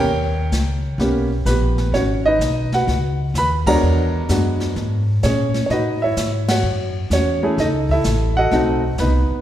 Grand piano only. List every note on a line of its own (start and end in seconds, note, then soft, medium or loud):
0.00 1.44 A#4 medium
0.00 1.45 C#5 medium
0.00 1.52 G5 loud
1.00 1.28 A#3 medium
1.00 1.28 B3 medium
1.00 1.28 C#4 medium
1.00 1.28 G4 medium
1.46 1.91 B3 medium
1.46 1.91 G4 medium
1.46 1.95 B4 medium
1.94 2.24 C#4 medium
1.94 2.23 F#4 medium
1.94 2.01 C#5 medium
2.26 2.70 D#4 medium
2.26 2.70 B4 medium
2.26 2.74 D#5 loud
2.74 3.17 F#4 medium
2.74 3.17 B4 medium
2.74 3.17 F#5 medium
3.38 3.66 B4 medium
3.38 3.66 B5 loud
3.67 4.26 G#3 medium
3.67 4.26 B3 medium
3.67 4.26 D4 medium
3.67 4.26 F#4 medium
3.67 5.20 A#4 medium
3.67 5.20 C#5 medium
3.67 5.20 D5 medium
3.67 5.28 A#5 loud
4.30 5.01 G#3 medium
4.30 5.02 B3 medium
4.30 5.02 D4 soft
4.30 5.02 F#4 medium
5.23 5.65 C#4 medium
5.23 5.64 G#4 medium
5.23 5.65 C#5 medium
5.66 5.70 C#5 medium
5.71 6.00 D#4 medium
5.71 6.01 F#4 medium
5.71 6.00 B4 medium
5.71 6.00 D#5 medium
6.02 6.46 E4 medium
6.02 6.46 C#5 medium
6.02 6.45 E5 medium
6.49 6.93 F#4 medium
6.49 6.94 C#5 medium
6.49 6.92 F#5 medium
7.13 7.42 C#4 medium
7.13 7.56 F#4 medium
7.13 7.56 C#5 medium
7.43 7.57 A3 medium
7.43 7.57 C#4 medium
7.43 7.57 E4 medium
7.43 7.57 G#4 medium
7.60 7.88 D#4 medium
7.60 7.89 A4 medium
7.60 7.67 D#5 medium
7.91 8.35 E4 medium
7.91 8.35 A4 medium
7.91 8.39 E5 medium
8.37 8.52 F#4 medium
8.37 8.82 A4 medium
8.37 8.81 D#5 medium
8.37 8.80 F#5 loud
8.52 8.80 A3 medium
8.52 8.80 C4 medium
8.52 8.81 D#4 medium
8.52 8.81 F#4 medium
9.00 9.41 B3 medium
9.00 9.41 D#4 medium
9.00 9.41 B4 medium